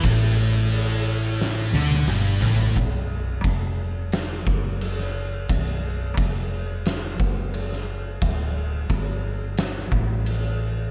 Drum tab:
CC |x---x-----------|x---x---x---x---|x---x---x---x---|x---x---x---x---|
SD |--------o-------|--------o----o--|--------o----o--|--------o-------|
T1 |----------oo----|----------------|----------------|----------------|
T2 |------------o---|----------------|----------------|----------------|
FT |--------------oo|----------------|----------------|----------------|
BD |o---------------|o---o-----o-----|o---o-----o-----|o---o-----o-----|